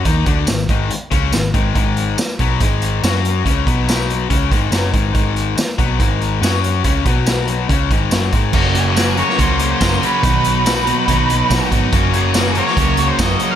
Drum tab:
CC |----------------|----------------|----------------|----------------|
HH |x-x-x-x-x-x-x-x-|x-x-x-x-x-x-x-x-|x-x-x-x-x-x-x-x-|x-x-x-x-x-x-x-x-|
TB |----x-------x---|----x-------x---|----x-------x---|----x-------x---|
SD |----o-------o---|----o-------o---|----o-------o---|----o-------o---|
BD |o-o---o---o---o-|o-----o-o-------|o-o-----o-o---o-|o-----o-o-------|

CC |----------------|x---------------|----------------|----------------|
HH |x-x-x-x-x-x-x-x-|--x-x-x-x-x-x-x-|x-x-x-x-x-x-x-x-|x-x-x-x-x-x-x-x-|
TB |----x-------x---|----x-------x---|----x-------x---|----x-------x---|
SD |----o-------o---|----o--o----o---|----o-------o---|----o--o----o---|
BD |o-o-----o-o---o-|o-------o---o---|o-------o---o-o-|o-------o---o---|